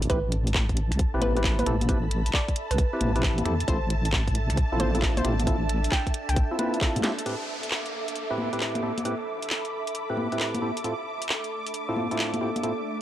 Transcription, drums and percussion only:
0.02 closed hi-hat medium
0.10 kick loud
0.10 closed hi-hat medium
0.32 closed hi-hat loud
0.47 closed hi-hat medium
0.54 kick loud
0.54 clap loud
0.69 kick medium
0.69 closed hi-hat soft
0.77 closed hi-hat loud
0.92 finger snap soft
0.92 closed hi-hat medium
0.99 kick loud
0.99 closed hi-hat medium
1.22 closed hi-hat loud
1.22 high conga medium
1.37 closed hi-hat soft
1.44 kick loud
1.44 clap loud
1.59 closed hi-hat medium
1.59 high conga medium
1.66 finger snap soft
1.66 closed hi-hat loud
1.81 closed hi-hat medium
1.81 high conga medium
1.89 kick loud
1.89 closed hi-hat medium
2.11 closed hi-hat loud
2.26 closed hi-hat medium
2.34 kick loud
2.34 clap loud
2.48 kick medium
2.48 closed hi-hat soft
2.56 closed hi-hat loud
2.71 finger snap soft
2.71 closed hi-hat medium
2.78 kick loud
2.78 closed hi-hat medium
3.01 closed hi-hat loud
3.01 high conga medium
3.16 closed hi-hat soft
3.23 kick loud
3.23 clap loud
3.38 closed hi-hat medium
3.38 high conga medium
3.46 finger snap soft
3.46 closed hi-hat loud
3.60 closed hi-hat medium
3.68 kick loud
3.68 closed hi-hat medium
3.90 closed hi-hat loud
4.05 closed hi-hat medium
4.13 kick loud
4.13 clap loud
4.28 kick medium
4.28 closed hi-hat soft
4.35 closed hi-hat loud
4.50 finger snap soft
4.50 closed hi-hat medium
4.57 kick loud
4.57 closed hi-hat medium
4.80 closed hi-hat loud
4.80 high conga medium
4.95 closed hi-hat soft
5.02 kick loud
5.02 clap loud
5.17 closed hi-hat medium
5.17 high conga medium
5.25 finger snap soft
5.25 closed hi-hat loud
5.40 closed hi-hat medium
5.40 high conga medium
5.47 kick loud
5.47 closed hi-hat medium
5.69 closed hi-hat loud
5.84 closed hi-hat medium
5.92 kick loud
5.92 clap loud
6.07 kick medium
6.07 closed hi-hat soft
6.14 closed hi-hat loud
6.29 finger snap soft
6.29 closed hi-hat medium
6.36 kick loud
6.36 closed hi-hat medium
6.59 closed hi-hat loud
6.59 high conga medium
6.74 closed hi-hat soft
6.81 kick loud
6.81 clap loud
6.96 closed hi-hat medium
6.96 high conga medium
7.04 snare medium
7.04 closed hi-hat loud
7.19 closed hi-hat medium
7.26 closed hi-hat medium
7.63 closed hi-hat medium
7.71 clap loud
7.86 closed hi-hat soft
8.08 closed hi-hat medium
8.16 closed hi-hat medium
8.38 high conga medium
8.53 closed hi-hat soft
8.60 clap loud
8.75 closed hi-hat soft
8.75 high conga medium
8.98 closed hi-hat medium
8.98 high conga medium
9.05 closed hi-hat medium
9.42 closed hi-hat medium
9.50 clap loud
9.65 closed hi-hat soft
9.87 closed hi-hat medium
9.95 closed hi-hat medium
10.17 high conga medium
10.32 closed hi-hat soft
10.40 clap loud
10.55 closed hi-hat soft
10.55 high conga medium
10.77 closed hi-hat medium
10.84 closed hi-hat medium
11.22 closed hi-hat medium
11.29 clap loud
11.44 closed hi-hat soft
11.67 closed hi-hat medium
11.74 closed hi-hat medium
11.96 high conga medium
12.11 closed hi-hat soft
12.19 clap loud
12.34 closed hi-hat soft
12.34 high conga medium
12.56 closed hi-hat medium
12.56 high conga medium
12.64 closed hi-hat medium

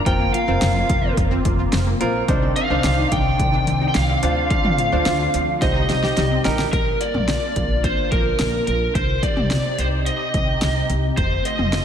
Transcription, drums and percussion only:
0.06 kick loud
0.06 closed hi-hat medium
0.34 closed hi-hat medium
0.62 snare loud
0.62 closed hi-hat medium
0.90 kick medium
0.90 closed hi-hat medium
1.17 kick loud
1.17 closed hi-hat medium
1.45 kick medium
1.45 closed hi-hat medium
1.73 snare loud
1.73 closed hi-hat medium
2.01 closed hi-hat medium
2.28 kick loud
2.28 closed hi-hat medium
2.56 closed hi-hat medium
2.84 snare loud
2.84 closed hi-hat medium
3.12 kick medium
3.12 closed hi-hat medium
3.40 kick loud
3.40 closed hi-hat medium
3.67 closed hi-hat medium
3.95 snare loud
3.95 closed hi-hat medium
4.23 closed hi-hat medium
4.51 kick loud
4.51 closed hi-hat medium
4.65 mid tom loud
4.78 closed hi-hat medium
5.06 snare loud
5.06 closed hi-hat medium
5.34 closed hi-hat medium
5.62 kick loud
5.62 snare medium
5.62 closed hi-hat medium
5.90 snare medium
5.90 closed hi-hat medium
6.03 snare medium
6.17 snare medium
6.17 closed hi-hat medium
6.45 snare loud
6.45 closed hi-hat medium
6.59 snare medium
6.73 kick loud
6.73 closed hi-hat medium
7.01 closed hi-hat medium
7.14 mid tom medium
7.28 snare loud
7.28 closed hi-hat medium
7.56 kick medium
7.56 closed hi-hat medium
7.84 kick medium
7.84 closed hi-hat medium
8.12 kick medium
8.12 closed hi-hat medium
8.39 snare loud
8.39 closed hi-hat medium
8.67 closed hi-hat medium
8.95 kick loud
8.95 closed hi-hat medium
9.23 kick loud
9.23 closed hi-hat medium
9.37 mid tom medium
9.51 snare loud
9.51 closed hi-hat medium
9.79 closed hi-hat medium
10.06 closed hi-hat medium
10.34 kick medium
10.34 closed hi-hat medium
10.62 snare loud
10.62 closed hi-hat medium
10.90 closed hi-hat medium
11.17 kick loud
11.17 closed hi-hat medium
11.45 closed hi-hat medium
11.59 mid tom medium
11.73 snare loud
11.73 closed hi-hat medium

